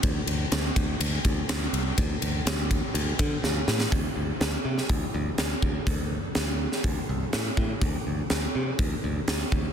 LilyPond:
<<
  \new Staff \with { instrumentName = "Picked electric bass" } { \clef bass \time 4/4 \key c \mixolydian \tempo 4 = 123 d,8 d,8 d,8 d,8 d,8 d,8 d,8 c,8 | d,8 d,8 d,4 d,8 d8 d,8 a,8 | d,8 d,8 d,8 c8 d,8 d,8 d,8 d,8 | d,4 d,4 d,8 c,8 a,8 a,8 |
d,8 d,8 d,8 c8 d,8 d,8 d,8 d,8 | }
  \new DrumStaff \with { instrumentName = "Drums" } \drummode { \time 4/4 <bd cymr>8 cymr8 <cymr sn>8 <bd cymr>8 cymr8 <bd cymr>8 <cymr sn>8 cymr8 | <bd cymr>8 cymr8 <cymr sn>8 <bd cymr>8 cymr8 <bd cymr>8 sn8 sn16 sn16 | <hho bd>4 <hho sn>8. sn16 <hho bd>4 <hho sn>8 bd8 | <hho bd>4 <hho sn>8. sn16 <hho bd>4 <hho sn>8 bd8 |
<hho bd>4 <hho sn>4 <hho bd>4 <hho sn>8 bd8 | }
>>